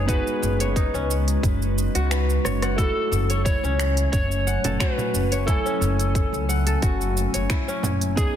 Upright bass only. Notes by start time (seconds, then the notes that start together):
Already playing: F#1
0.42 F#1
0.94 C#2
1.43 F#1
1.95 C#2
2.45 F#1
3.12 F#1
3.63 C#2
4.13 F#1
4.64 F#1
5.14 F#1
5.81 F#1
6.33 C#2
6.82 F#1
7.34 F#1
7.84 F#1